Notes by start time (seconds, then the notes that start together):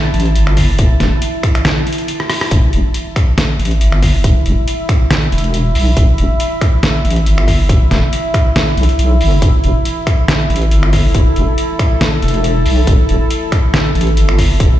Already playing: E4 A5
0.14 A1, closed hi-hat
0.20 closed hi-hat
0.25 closed hi-hat
0.35 G1, closed hi-hat
0.47 finger snap
0.57 kick, open hi-hat
0.78 E1, kick, closed hi-hat
1.00 E1, snare, closed hi-hat
1.22 closed hi-hat
1.43 finger snap, kick, closed hi-hat
1.55 finger snap, closed hi-hat
1.65 snare, closed hi-hat
1.87 closed hi-hat
1.93 closed hi-hat
1.98 closed hi-hat
2.08 closed hi-hat
2.20 cross-stick
2.30 cross-stick, open hi-hat
2.41 cross-stick
2.51 E1 E4 E5, kick, closed hi-hat
2.73 E1, closed hi-hat
2.94 closed hi-hat
3.16 finger snap, kick, closed hi-hat
3.38 snare, closed hi-hat
3.59 A1, closed hi-hat
3.65 closed hi-hat
3.71 closed hi-hat
3.81 G1, closed hi-hat
3.92 finger snap
4.03 kick, open hi-hat
4.24 E1, kick, closed hi-hat
4.46 E1, closed hi-hat
4.68 closed hi-hat
4.89 finger snap, kick, closed hi-hat
5.11 snare, closed hi-hat
5.32 E1, closed hi-hat
5.38 closed hi-hat
5.44 closed hi-hat
5.54 closed hi-hat
5.75 B1, open hi-hat
5.97 E1, kick, closed hi-hat
6.18 E1, closed hi-hat
6.40 closed hi-hat
6.61 finger snap, kick, closed hi-hat
6.83 snare, closed hi-hat
7.05 A1, closed hi-hat
7.11 closed hi-hat
7.16 closed hi-hat
7.26 G1, closed hi-hat
7.38 finger snap
7.48 kick, open hi-hat
7.69 E1, kick, closed hi-hat
7.91 E1, snare, closed hi-hat
8.13 closed hi-hat
8.34 finger snap, kick, closed hi-hat
8.56 snare, closed hi-hat
8.77 B1, closed hi-hat
8.83 closed hi-hat
8.89 closed hi-hat
8.99 B1, closed hi-hat
9.20 G1, open hi-hat
9.42 E1 A4, kick, closed hi-hat
9.64 E1, closed hi-hat
9.85 closed hi-hat
10.07 finger snap, kick, closed hi-hat
10.28 snare, closed hi-hat
10.50 A1, closed hi-hat
10.56 closed hi-hat
10.62 closed hi-hat
10.71 G1, closed hi-hat
10.83 finger snap
10.93 kick, open hi-hat
11.15 E1, kick, closed hi-hat
11.36 E1, closed hi-hat
11.58 closed hi-hat
11.79 finger snap, kick, closed hi-hat
12.01 snare, closed hi-hat
12.22 E1, closed hi-hat
12.28 closed hi-hat
12.34 closed hi-hat
12.44 closed hi-hat
12.66 B1, open hi-hat
12.87 E1, kick, closed hi-hat
13.09 E1, closed hi-hat
13.31 closed hi-hat
13.52 finger snap, kick, closed hi-hat
13.74 snare, closed hi-hat
13.95 A1, closed hi-hat
14.01 closed hi-hat
14.07 closed hi-hat
14.17 G1, closed hi-hat
14.29 finger snap
14.38 kick, open hi-hat
14.60 E1, kick, closed hi-hat